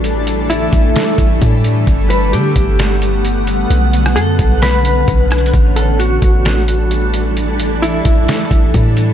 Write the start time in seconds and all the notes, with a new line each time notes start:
Already playing: A1 E3 G3 A3 D4 A4
0.04 closed hi-hat
0.27 closed hi-hat
0.50 E4, closed hi-hat
0.73 A1, kick, closed hi-hat
0.96 snare, closed hi-hat
1.18 A1, kick, closed hi-hat
1.42 A2, kick, closed hi-hat
1.64 closed hi-hat
1.87 G1 D3 B3 F#5, kick, closed hi-hat
2.10 B4, closed hi-hat
2.33 D3 G4, closed hi-hat
2.56 G1, kick, closed hi-hat
2.79 snare, closed hi-hat
3.02 closed hi-hat
3.25 closed hi-hat
3.47 closed hi-hat
3.70 B1 D3 C#4, closed hi-hat
3.93 closed hi-hat
4.06 cross-stick
4.16 F#2 A4, closed hi-hat
4.39 B1, kick, closed hi-hat
4.62 B4, snare, closed hi-hat
4.85 closed hi-hat
5.08 B1, kick, closed hi-hat
5.31 cross-stick, closed hi-hat
5.38 closed hi-hat
5.46 closed hi-hat
5.53 A1 E3 G3 D4 A4, kick, closed hi-hat
5.76 A4, closed hi-hat
5.99 F#4, closed hi-hat
6.22 A1, kick, closed hi-hat
6.45 snare, closed hi-hat
6.68 closed hi-hat
6.91 closed hi-hat
7.14 closed hi-hat
7.37 A4, closed hi-hat
7.60 closed hi-hat
7.82 E4, closed hi-hat
8.05 A1, kick, closed hi-hat
8.28 snare, closed hi-hat
8.51 A1, kick, closed hi-hat
8.74 A2, kick, closed hi-hat
8.97 closed hi-hat